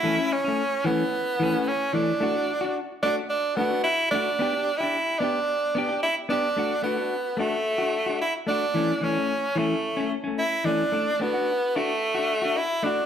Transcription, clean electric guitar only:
X:1
M:4/4
L:1/16
Q:1/4=110
K:D
V:1 name="Clean electric guitar"
[E,A,C] C z [A,C] z2 [E,A,C] z3 [E,A,C] [A,C] z2 [E,A,] z | [A,DF] [DF] z [DF] z2 [A,DF] z3 [A,DF] [DF] z2 [A,DF] z | [B,DG] [DG] z [DG] z2 [B,DG] z3 [B,DG] [DG] z2 [B,DG] z | [A,DF] z [A,DF] [DF] z2 [A,DF] z2 [DF] z [DF] z2 [A,DF] z |
[E,A,C] z [E,A,C] [A,C] z2 [E,A,C] z2 [A,C] z [A,C] z2 [E,A,C] z | [A,D] z [A,DF] [DF] z2 [DF] z2 [DF] z [DF] z2 [A,DF] z |]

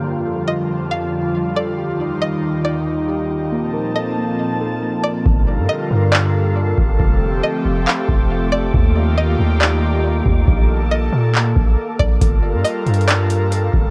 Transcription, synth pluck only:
X:1
M:4/4
L:1/8
Q:1/4=138
K:Gm
V:1 name="Synth pluck"
z2 e2 f3 d | z2 e2 d4 | z2 e2 z3 d | z2 e2 d4 |
z2 e2 f3 d | z2 e2 d4 | z2 e2 z3 d | z2 e2 d4 |]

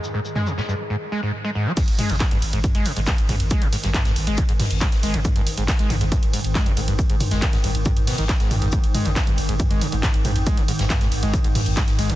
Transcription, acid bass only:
X:1
M:4/4
L:1/16
Q:1/4=138
K:G#m
V:1 name="Acid bass" clef=bass
z G,, z G, B,, G,, =G,, z ^G,, z G, G,, z G, G,, G, | G,, z G, B,, G,, =G,, z ^G,, z G, B,, G,, =G,, z ^G,, z | G, B,, G,, =G,, z ^G,, z G, B,, G,, =G,, z ^G,, z G, B,, | G,, =G,, z ^G,, z G, B,, G,, =G,, z ^G,, z G, B,, G,, =G,, |
z G,, z G, B,, G,, =G,, z ^G,, z B,, D, z G,, A,, G,, | G,, z G, B,, G,, =G,, z ^G,, z G, B,, G,, =G,, z ^G,, z | G, B,, G,, =G,, z ^G,, z G, B,, G,, =G,, z ^G,, z G, B,, |]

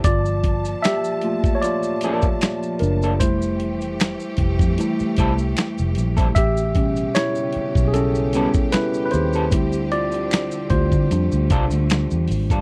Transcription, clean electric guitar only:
X:1
M:4/4
L:1/16
Q:"Swing 16ths" 1/4=76
K:F
V:1 name="Clean electric guitar"
z8 z2 [F,B,DA] z4 [F,B,DA] | z8 z2 [G,CEA] z4 [G,CEA] | z8 z2 [G,=B,^CA] z4 [G,B,CA] | z8 z2 [G,DFA] z4 [G,DFA] |]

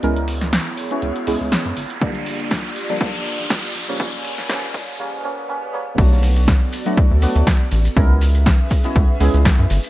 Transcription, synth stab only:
X:1
M:4/4
L:1/16
Q:"Swing 16ths" 1/4=121
K:C#phr
V:1 name="Synth stab"
[G,B,CE^A] z6 [G,B,CEF]2 z [G,B,CEG]4 z2 | [D,=F,=G,_B,D]6- [D,F,G,B,D] [D,F,G,B,D] [D,F,G,B,D]6- [D,F,G,B,D] [C,^E,G,^A,C] | [C,^E,=G,^A,C]4 [C,E,G,A,C]4 [C,E,G,A,C]2 [C,E,G,A,C]2 [C,E,G,A,C]2 [C,E,G,A,C]2 | [F,A,B,DF]6- [F,A,B,DF] [F,A,B,DF] z2 [F,A,B,DF]2 z4 |
[G,B,CE^A] z6 [G,B,CEF]2 z [G,B,CEG]4 z2 |]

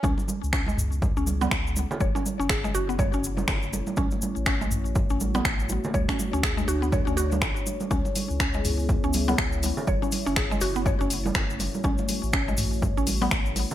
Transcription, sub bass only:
X:1
M:4/4
L:1/16
Q:"Swing 16ths" 1/4=122
K:C#phr
V:1 name="Sub bass" clef=bass
C,, z2 C,,3 C,,3 C,,3 C,,3 z | F,,, z2 F,,,3 F,,,3 F,,,3 F,,,3 z | A,,, z2 A,,,3 A,,,3 A,,,3 A,,,3 z | D,, z2 D,,3 D,,3 D,,3 A,,, z3 |
C,, z2 C,,3 C,,3 C,,3 C,,3 z | F,,, z2 F,,,3 F,,,3 F,,,3 F,,,3 z | A,,, z2 A,,,3 A,,,3 A,,,3 A,,,3 z |]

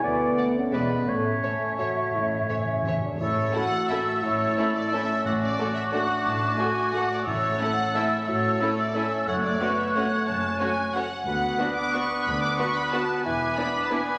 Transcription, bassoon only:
X:1
M:3/4
L:1/8
Q:1/4=177
K:A
V:1 name="Bassoon"
A,4 G,2 | A,2 C2 F2 | E2 C3 D | E2 F4 |
E4 C2- | C4 D2- | D2 F4 | E2 C2 E2 |
F2 E2 C2 | A,2 B,2 A,2 | C4 z2 | F2 D4- |
D4 F2 | E2 D4 |]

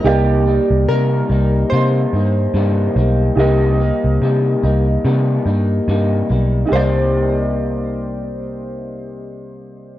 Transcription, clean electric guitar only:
X:1
M:4/4
L:1/8
Q:"Swing 16ths" 1/4=72
K:Cm
V:1 name="Clean electric guitar"
[C,G,B,E] [G,B,E] [C,G,B,E] [G,B,E] [C,G,B,E] [G,B,E] [C,G,B,E] [G,B,E] | [C,G,B,E] [G,B,E] [C,G,B,E] [G,B,E] [C,G,B,E] [G,B,E] [C,G,B,E] [G,B,E] | [C,G,B,E]8 |]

